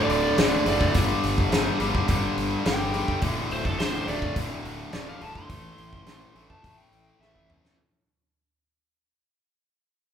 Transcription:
Already playing: D2 A2 D3
0.09 D1 D5, open hi-hat
0.37 D1 D2 A2 D3 D5, snare, open hi-hat
0.66 F#1 D2 A2 D3, open hi-hat
0.81 kick
0.94 G1 G2 D3 G3, kick, open hi-hat
1.23 G1, open hi-hat
1.38 kick
1.51 G1 G2 D3 G3, snare, open hi-hat
1.79 G1 G2 D3 G3, open hi-hat
1.95 kick
2.07 G1 G2 D3 G3, kick, open hi-hat
2.37 G1, open hi-hat
2.64 G1 G2 D3 G3 G5, snare, open hi-hat
2.92 G2 D3 G3, open hi-hat
3.08 kick
3.21 D1 D2 A2 D3, kick, open hi-hat
3.50 D1 C5, open hi-hat
3.65 A4, kick
3.78 D1 D2 A2 D3 C5, snare, open hi-hat
4.07 D1 D2 A2 D3 D5, open hi-hat
4.22 kick
4.36 D1 D2 A2 D3, kick, open hi-hat
4.64 D1, open hi-hat
4.92 D1 D2 A2 D3 D5, snare, open hi-hat
5.09 F5
5.21 D1 D2 A2 D3 A5, open hi-hat
5.34 C6, kick
5.49 A1 A2 E3 A3, kick, open hi-hat
5.78 A1, open hi-hat
5.93 kick
6.06 A1 A2 E3 A3, snare, open hi-hat
6.35 A1 A2 E3 A3, open hi-hat
6.50 A5, kick
6.63 A1 A2 E3 A3, kick, open hi-hat
6.78 G5
6.92 A1, open hi-hat
7.19 A1 A2 E3 A3 E5, snare
7.36 kick
7.49 A2 E3 A3, mid tom
7.65 snare

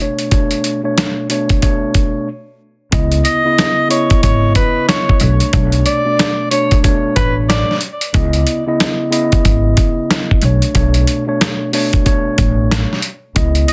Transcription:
0.00 B2 A3 D4 C#5
0.19 closed hi-hat
0.31 B2 A3 D4 C#5, kick, closed hi-hat
0.51 closed hi-hat
0.64 closed hi-hat
0.83 B2 A3 D4 C#5
0.98 snare, closed hi-hat
1.29 B2 A3 D4 C#5, closed hi-hat
1.49 kick, closed hi-hat
1.61 B2 A3 D4 C#5, kick, closed hi-hat
1.94 kick, closed hi-hat
2.91 C#2 C#3 B3 E4 D#5, kick, closed hi-hat
3.12 closed hi-hat
3.25 D#5, closed hi-hat
3.44 C#3 B3 E4 D#5
3.58 snare, closed hi-hat
3.88 C#3 B3 E4 C#5 D#5, closed hi-hat
4.10 kick, closed hi-hat
4.23 G#1 C#5, kick, closed hi-hat
4.55 B4, kick, closed hi-hat
4.88 C#5, snare, closed hi-hat
5.09 kick
5.20 B1 B2 A3 D4 C#5, closed hi-hat
5.40 closed hi-hat
5.53 B1 B2 A3 D4 C#5, kick, closed hi-hat
5.72 closed hi-hat
5.86 D5, closed hi-hat
6.05 B2 A3 D4 D5
6.19 snare, closed hi-hat
6.51 B2 A3 D4 C#5, closed hi-hat
6.71 kick, closed hi-hat
6.83 B2 A3 D4 C#5, kick, closed hi-hat
7.16 A1 B4, kick, closed hi-hat
7.49 D5, snare, closed hi-hat
7.71 snare
7.81 closed hi-hat
8.01 closed hi-hat
8.13 C#2 C#3 B3 E4 D#5, kick, closed hi-hat
8.33 closed hi-hat
8.47 closed hi-hat
8.66 C#3 B3 E4 D#5
8.80 snare, closed hi-hat
9.10 C#3 B3 E4 D#5, closed hi-hat
9.32 kick, closed hi-hat
9.45 G#1, kick, closed hi-hat
9.77 kick, closed hi-hat
10.11 snare, closed hi-hat
10.31 kick
10.42 B1 B2 A3 D4 C#5, closed hi-hat
10.62 closed hi-hat
10.74 B1 B2 A3 D4 C#5, kick, closed hi-hat
10.94 closed hi-hat
11.07 closed hi-hat
11.26 B2 A3 D4 C#5
11.41 snare, closed hi-hat
11.72 B2 A3 D4 C#5, open hi-hat
11.93 kick, closed hi-hat
12.04 B2 A3 D4 C#5, kick, closed hi-hat
12.38 A1, kick, closed hi-hat
12.71 snare, closed hi-hat
12.93 snare
13.02 closed hi-hat
13.35 C#2 C#3 B3 E4 D#5, kick, closed hi-hat
13.55 closed hi-hat
13.68 D#5, closed hi-hat

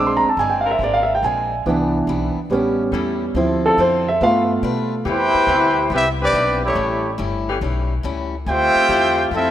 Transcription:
Already playing: A#1 A#2 G#3 C4 D4
0.00 C4 D4
0.07 C6
0.17 A#5
0.24 muted upright bass stroke
0.29 A5
0.37 G1 A#2 G#3 C4 D4 G#5
0.50 G5
0.61 F5
0.65 G#3 C4 D4 A#4
0.71 E5
0.79 G#1 A#2 G#3 C4
0.83 D4 D5
0.94 F5
1.03 E5
1.15 G5
1.23 A#1 A#2 G#3 C4 D4 G#5
1.66 C2 C3 E3 G3 B3 D4 E4
2.07 B1 C3 G3 B3 E4
2.36 muted upright bass stroke
2.50 A1 A2 G3 B3 C#4
2.55 E4
2.92 E2 A2 G3 C#4 E4 A4
3.35 D2 D3 F3 C4 E4 F4 A4
3.65 F3 C4 D4 A4
3.77 F2 D3 C4 F4 A4 C5
4.08 E5
4.21 G2 G3 A3 B3 D4 F4 B4 F5
4.63 B2 G3 D4 F4 B4
5.05 E2 B2 C3 E3 G3 B3 E4 G4
5.09 E4 B4 C5 G5
5.34 muted upright bass stroke
5.47 D2 C3 E3 G3 B3 C4 E4 G4
5.89 C2 C3 G3 B3 E4 G4
5.93 C4 B4 E5
6.20 G3 C4 D4 G4 B4 D5
6.33 B1 C3 G3 B3 E4
6.62 E3 G3 A3 C#4 E4 G4 C#5
6.74 A1 A2 G3 C#4 E4
7.18 G1 A2 G3 C#4 E4
7.49 E3 A3 C#4 G4
7.61 B1 A2 G3 C#4 E4
8.03 C#2 A2 G3 C#4 E4
8.46 D2 D3 G3 A3 C4 F4 G4 C5 E5 G5
8.76 muted upright bass stroke
8.87 E2 D3 F3 C4 E4 G4
8.91 G3 C4 F4
9.31 F2 D3 G3 A3 C4 E4 A4 E5
9.35 F4

